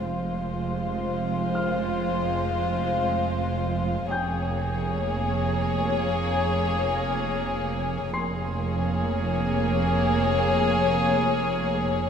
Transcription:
Already playing: G#4 G#5
0.04 F1 F2 G#3 F4 C5
1.55 F6
4.09 F1 F2 A#3 G#4 C#5 G5 G6
8.12 F1 F2 A#3 G#4 C#5 C6 C7

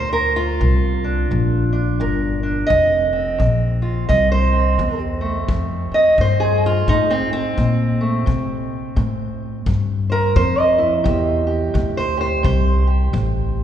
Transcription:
Already playing: D2 A#2 F4 C5
0.13 A#4
0.36 F4
0.60 C2 A#2
1.04 D4
1.31 A#1 A#2
1.73 D4
2.00 G1 A#2 A#4
2.43 D4
2.67 F1 F2 D#5, kick
3.13 C4
3.38 A#1 F2, kick
3.82 F4
4.08 C2 F2 D#5, kick
4.32 C5
4.52 C4
4.78 E2 F2, kick
5.21 A3
5.48 F2, kick
5.91 C4 D#5, muted upright bass stroke
6.18 F2 G2 C5, kick
6.40 G#4
6.66 F4
6.87 F2 A2 D#4, kick
7.11 C4
7.33 C4
7.57 F2 A#2, kick
8.01 A3
8.26 C3, kick
8.96 A2 C3, kick
9.66 G2 C3, kick
10.10 A#4 C5
10.36 F2 C3 C5, kick
10.59 D#5
10.78 E4
11.04 E2 C3 G4, kick
11.47 G4
11.74 D2 C3, kick
11.97 C5
12.17 G4 C5
12.43 C2 C3 C5, kick
12.87 G4
13.13 A1 C3, kick

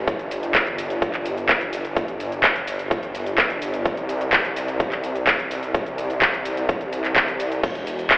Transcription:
0.08 G1, kick, closed hi-hat, shaker
0.19 closed hi-hat, shaker
0.31 open hi-hat, shaker
0.43 closed hi-hat, shaker
0.55 kick, clap, closed hi-hat, shaker
0.67 closed hi-hat, shaker
0.78 open hi-hat, shaker
0.90 closed hi-hat, shaker
1.02 kick, closed hi-hat, shaker
1.14 clap, closed hi-hat, shaker
1.26 open hi-hat, shaker
1.37 closed hi-hat, shaker
1.49 kick, clap, closed hi-hat, shaker
1.61 closed hi-hat, shaker
1.73 open hi-hat, shaker
1.85 closed hi-hat, shaker
1.97 kick, closed hi-hat, shaker
2.08 closed hi-hat, shaker
2.20 open hi-hat, shaker
2.32 closed hi-hat, shaker
2.44 kick, clap, closed hi-hat, shaker
2.56 closed hi-hat, shaker
2.67 open hi-hat, shaker
2.79 closed hi-hat, shaker
2.91 kick, closed hi-hat, shaker
3.03 closed hi-hat, shaker
3.15 open hi-hat, shaker
3.26 closed hi-hat, shaker
3.38 kick, clap, closed hi-hat, shaker
3.50 closed hi-hat, shaker
3.62 open hi-hat, shaker
3.74 closed hi-hat, shaker
3.85 C2, kick, closed hi-hat, shaker
3.97 closed hi-hat, shaker
4.09 open hi-hat, shaker
4.21 closed hi-hat, shaker
4.33 kick, clap, closed hi-hat, shaker
4.45 closed hi-hat, shaker
4.56 open hi-hat, shaker
4.68 closed hi-hat, shaker
4.80 kick, closed hi-hat, shaker
4.92 clap, closed hi-hat, shaker
5.04 open hi-hat, shaker
5.16 closed hi-hat, shaker
5.27 kick, clap, closed hi-hat, shaker
5.39 closed hi-hat, shaker
5.51 open hi-hat, shaker
5.63 closed hi-hat, shaker
5.75 kick, closed hi-hat, shaker
5.86 closed hi-hat, shaker
5.98 open hi-hat, shaker
6.10 closed hi-hat, shaker
6.22 kick, clap, closed hi-hat, shaker
6.34 closed hi-hat, shaker
6.45 open hi-hat, shaker
6.57 closed hi-hat, shaker
6.69 kick, closed hi-hat, shaker
6.81 closed hi-hat, shaker
6.93 open hi-hat, shaker
7.04 clap, closed hi-hat, shaker
7.16 kick, clap, closed hi-hat, shaker
7.28 closed hi-hat, shaker
7.40 open hi-hat, shaker
7.52 closed hi-hat, shaker
7.63 E1, kick, closed hi-hat, crash, ride, shaker
7.75 closed hi-hat, shaker
7.87 open hi-hat, shaker
7.99 closed hi-hat, shaker
8.11 kick, clap, closed hi-hat, ride, shaker

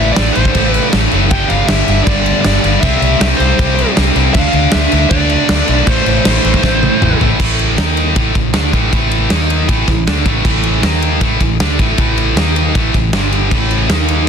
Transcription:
Already playing: A2 E3 A3 E5
0.00 A1
0.13 D5, snare, crash
0.17 A1 A2 E3 A3
0.32 C5, crash
0.36 A1 A2 E3 A3
0.45 kick
0.55 A1 A2 E3 A3, kick, crash
0.72 B4, crash
0.93 A1 A2 E3 A3, snare, crash
1.11 F#1 A2 E3 A3, crash
1.31 G1 G2 D3 G3 G5, kick, crash
1.49 G1 F5, crash
1.67 G1 G2 D3 G3 E5, snare, crash
1.88 G1 G2 D3 G3, crash
2.04 G1 G2 D3 G3 D5, kick, crash
2.26 crash
2.41 G1 G2 D5, snare, crash
2.45 D3 G3
2.64 G1 G2 D3 G3, crash
2.81 C2 C3 G3 C4 E5, kick, crash
3.01 C2, crash
3.19 C2 C3 G3 C4 E5, snare, crash
3.37 C2 C3 G3 C4 C5, crash
3.59 C2 C3 G3 C4, kick, crash
3.78 crash
3.97 C2 C3 G3 C4, snare, crash
4.15 C2 C3 G3 C4, crash
4.34 D2 D3 A3 D4 F5, kick, crash
4.53 D2, crash
4.72 D2 D3 A3 D4 E5, snare, crash
4.92 D2 D3 A3 D4, crash
5.10 D2 D3 A3 D4 D5, kick, crash
5.30 crash
5.49 D2 D3 A3 D4, snare, crash
5.68 B1 D3 A3 D4, crash
5.87 A1 A2 E3 A3 C5, kick, crash
6.06 A1, crash
6.25 A1 A2 E3 A3, snare, crash
6.44 A1 A2 E3 A3, crash
6.54 kick
6.63 A1 A2 E3 A3, kick, snare
6.83 high tom
7.01 A1 A2 E3 A3, mid tom
7.20 A1 A2 E3 A3, floor tom
7.40 A1 A2 E3 A3, kick, crash
7.59 ride
7.77 D#2 D#3 A#3 D#4, snare, ride
7.97 ride
8.16 A1 A2 E3 A3, kick, ride
8.35 A1 A2 E3, kick, ride
8.54 D2 D3 A3 D4, snare, ride
8.73 A1 A2 E3 A3, kick, ride
8.93 A1 A2 E3 A3, kick, ride
9.11 ride
9.30 D#2 D#3 A#3 D#4, snare, ride
9.41 snare
9.50 ride
9.69 A1 A2 E3 A3, kick, ride
9.88 A1 A2 E3, kick, snare, ride
10.06 D2 D3 A3 D4, snare, ride
10.25 A1 A2 E3 A3, kick, ride
10.45 A1 A2 E3 A3, kick, crash
10.63 ride
10.82 D#2 D#3 A#3 D#4, snare, ride
10.93 snare
11.02 ride
11.21 A1 A2 E3 A3, kick, ride
11.40 A1 A2 E3, kick, ride
11.59 D2 D3 A3 D4, snare, ride
11.79 A1 A2 E3 A3, kick, ride
11.98 A1 A2 E3 A3, kick, ride
12.18 ride
12.36 D#2 D#3 A#3 D#4, snare, ride
12.56 ride
12.75 A1 A2 E3 A3, kick, ride
12.94 A1 A2 E3, kick, ride
13.13 G1 G2 D3 G3, snare, ride
13.32 ride
13.51 A1 A2 E3 A3, kick, crash
13.71 ride
13.89 D#2 D#3 A#3 D#4, snare, ride
14.08 ride

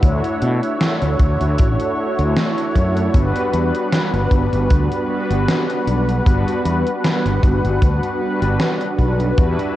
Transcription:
Already playing: E5 F#5
0.01 D2 A3 D4 E4 F#4 C#5, kick, closed hi-hat
0.24 closed hi-hat
0.42 B2, closed hi-hat
0.63 closed hi-hat
0.81 snare, closed hi-hat
1.02 D2, closed hi-hat
1.19 D2, kick, closed hi-hat
1.41 D2, closed hi-hat
1.58 A1, kick, closed hi-hat
1.80 closed hi-hat
2.19 D2, closed hi-hat
2.36 snare, closed hi-hat
2.58 closed hi-hat
2.75 F#2, kick, closed hi-hat
2.97 closed hi-hat
3.13 G1 G3 B3 D4 F#4 B4 F#5, kick, closed hi-hat
3.36 closed hi-hat
3.54 E2, closed hi-hat
3.75 closed hi-hat
3.93 snare, closed hi-hat
4.14 G1, closed hi-hat
4.31 G1, kick, closed hi-hat
4.53 G1, closed hi-hat
4.70 D2, kick, closed hi-hat
4.92 closed hi-hat
5.08 G3 B3 D4 F#4 B4
5.30 G1, closed hi-hat
5.48 snare, closed hi-hat
5.70 closed hi-hat
5.87 B1, closed hi-hat
6.09 closed hi-hat
6.24 G1 G3 B3 D4 F#4 B4, kick, closed hi-hat
6.48 closed hi-hat
6.65 E2, closed hi-hat
6.87 closed hi-hat
7.04 snare, closed hi-hat
7.25 G1, closed hi-hat
7.43 G1, kick, closed hi-hat
7.64 G1, closed hi-hat
7.82 D2, kick, closed hi-hat
8.03 closed hi-hat
8.20 G3 B3 D4 F#4 B4
8.42 G1, closed hi-hat
8.60 snare, closed hi-hat
8.81 closed hi-hat
8.99 B1, kick, closed hi-hat
9.20 closed hi-hat
9.36 E2 G3 D4 E4 F#4 B4 F#5 E6, kick, closed hi-hat
9.59 closed hi-hat

